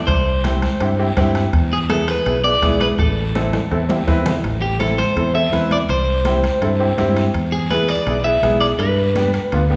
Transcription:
0.07 C2 C5, bombo low, bombo rim, high timbale, long guiro
0.27 high conga
0.44 C4 E4 G4, bombo rim, high conga, high timbale, short guiro
0.62 bombo rim, high conga, high timbale, short guiro
0.80 G2 C4 E4 G4, bombo rim, high conga, high timbale, long guiro
0.99 C4 E4 G4
1.17 G2 C4 E4 G4, bombo low, bombo rim, high conga, high timbale, low timbale, short guiro
1.35 bombo rim, high timbale, short guiro
1.53 E2, bombo low, bombo rim, high timbale, long guiro
1.71 G#4, high conga
1.89 B3 E4 G#4 A4, bombo rim, high conga, high timbale, short guiro
2.08 B4, bombo rim, high timbale, short guiro
2.26 B1 B3 E4 G#4, bombo rim, high conga, high timbale, long guiro
2.44 B3 E4 G#4 D5
2.62 B1 B3 E4 G#4, bombo low, bombo rim, high conga, high timbale, low timbale, short guiro
2.80 B4, bombo rim, high conga, high timbale, short guiro
2.99 A1 A4, bombo low, bombo rim, high timbale, long guiro
3.35 C4 E4 A4, bombo rim, high conga, high timbale, short guiro
3.53 bombo rim, high conga, low timbale, short guiro
3.71 E2 C4 E4 A4, bombo rim, high conga, long guiro
3.89 C4 E4 G4, high conga, low timbale
4.07 E2 C4 E4 B4, bombo low, bombo rim, low timbale, short guiro
4.26 bombo rim, low conga, low timbale, short guiro
4.44 A1, high timbale, long guiro
4.62 G4, high conga
4.80 C4 E4 A4, high conga, high timbale, short guiro
4.98 C5, high conga, high timbale, short guiro
5.16 E2 C4 E4 A4, high conga, high timbale, long guiro
5.34 C4 E4 A4 E5
5.52 E2 C4 E4 B4, high conga, high timbale, short guiro
5.71 D5, high conga, high timbale, short guiro
5.89 C2 C5, high timbale, long guiro
6.07 high conga
6.25 C4 E4 G4, high conga, high timbale, short guiro
6.43 high conga, high timbale, short guiro
6.61 G2 C4 E4 A4, high conga, high timbale, long guiro
6.80 C4 E4 G4
6.98 G2 C4 E4 G4, high conga, high timbale, low timbale, short guiro
7.16 high timbale, short guiro
7.34 E2, high timbale, long guiro
7.52 G#4, high conga
7.70 B3 E4 G#4 B4, high conga, high timbale, short guiro
7.88 D5, high timbale, short guiro
8.06 B1 B3 E4 G#4, high conga, high timbale, long guiro
8.24 B3 E4 G#4 E5
8.43 B1 B3 E4 G#4, high conga, high timbale, short guiro
8.61 D5, high timbale, short guiro
8.79 G2 B4, high timbale, long guiro
8.97 high conga
9.15 B3 D4 G4, high conga, high timbale, short guiro
9.33 high timbale, short guiro
9.52 D2 B3 D4 F4, high conga, high timbale, long guiro
9.70 B3 D4 G4

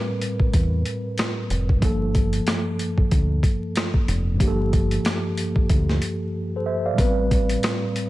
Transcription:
Already playing: A2 G3 C4 A#4 B4
0.21 closed hi-hat
0.40 kick
0.54 E2, kick, closed hi-hat
0.86 closed hi-hat
1.18 cross-stick, snare, closed hi-hat
1.50 F1, closed hi-hat
1.69 kick
1.78 G1 G2 F3, kick, closed hi-hat
1.83 A#3 A4
2.15 kick, closed hi-hat
2.33 closed hi-hat
2.47 cross-stick, snare, closed hi-hat
2.79 closed hi-hat
2.98 kick
3.11 D2, kick, closed hi-hat
3.43 kick, closed hi-hat
3.76 cross-stick, snare, closed hi-hat
3.94 kick
4.08 F1, closed hi-hat
4.35 G2 F3
4.39 G1 A#3 G4, kick, closed hi-hat
4.48 A4
4.73 kick, closed hi-hat
4.91 closed hi-hat
5.05 cross-stick, snare, closed hi-hat
5.37 closed hi-hat
5.56 kick
5.69 D2, kick, closed hi-hat
5.89 snare
6.02 closed hi-hat
6.56 A4 C5
6.66 C5 E5
6.86 D5 F5
6.93 A2 G3
6.97 A1 B3 B4, kick, closed hi-hat
7.04 C4
7.31 kick, closed hi-hat
7.49 closed hi-hat
7.63 cross-stick, snare, closed hi-hat
7.96 closed hi-hat

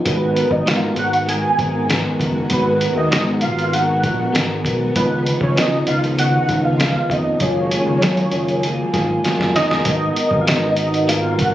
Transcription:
0.05 G#1 D#3 G#3 B3 F#4 B4, kick, closed hi-hat
0.35 B3 F#4 A#4, closed hi-hat
0.51 G#1 D#5, kick
0.66 G#2 G#3 B3 F#4 A#4 F5, snare, closed hi-hat
0.96 G#1 B3 F#4 A#4 F#5, closed hi-hat
1.13 closed hi-hat
1.26 G#3 B3 F#4 A#4 G#5, closed hi-hat
1.58 G#1 B3 F#4 A#4, kick, closed hi-hat
1.89 G#3 B3 F#4 A#4, snare, closed hi-hat
2.19 F#1 B3 F#4 A#4, kick, closed hi-hat
2.50 G#1 G#3 B3 F#4 B4, kick, closed hi-hat
2.80 B3 F#4 A#4, closed hi-hat
2.96 D#2 D#5
3.11 G#2 G#3 B3 F#4 A#4 D#5, snare, closed hi-hat
3.41 G#1 B3 F#4 A#4 F5, closed hi-hat
3.59 closed hi-hat
3.72 G#3 B3 F#4 A#4 F#5, closed hi-hat
4.03 A#1 B3 F#4 A#4, kick, closed hi-hat
4.32 G#1 G#3 B3 F#4 A#4, snare, closed hi-hat
4.64 B1 B3 F#4 A#4, kick, closed hi-hat
4.95 C#2 C#3 D#3 F3 B3 D#4 B4, kick, closed hi-hat
5.25 F3 B3 D#4, closed hi-hat
5.41 C#2 C#5, kick
5.56 C#3 F3 B3 D#4 D#5, snare, closed hi-hat
5.87 C#2 F3 B3 D#4 F5, closed hi-hat
6.04 closed hi-hat
6.17 C#3 F3 B3 D#4 F#5, closed hi-hat
6.49 C#2 F3 B3 D#4, kick, closed hi-hat
6.64 F5
6.78 C#3 F3 B3 D#4, snare, closed hi-hat
7.09 F1 F3 B3 D#4 D#5, kick, closed hi-hat
7.40 F#1 F#3 G#3 A#3 F4 G#4 C#5, kick, closed hi-hat
7.71 A#3 F4 G#4, closed hi-hat
7.86 C#2
8.01 F#2 F#3 A#3 F4 G#4, snare, closed hi-hat
8.17 closed hi-hat
8.31 F#1 A#3 F4 G#4, closed hi-hat
8.48 closed hi-hat
8.62 F#3 A#3 F4 G#4, closed hi-hat
8.93 G#1 A#3 F4 G#4, kick, snare, closed hi-hat
9.24 F#3 A#3 F4 G#4, snare, closed hi-hat
9.39 F#1, snare
9.54 F1 A#3 F4 G#4 D#5, snare, closed hi-hat
9.70 F#1, snare
9.85 G#1 G#3 B3 F#4 A#4, kick, closed hi-hat
10.16 B3 F#4 A#4, closed hi-hat
10.31 G#1, kick
10.41 F5
10.46 G#3 B3 F#4 A#4 D#5, snare, closed hi-hat
10.76 B3 F#4 A#4, closed hi-hat
10.94 closed hi-hat
11.07 G#3 B3 F#4 A#4 F5, closed hi-hat
11.38 B3 F#4 A#4 F#5, kick, closed hi-hat

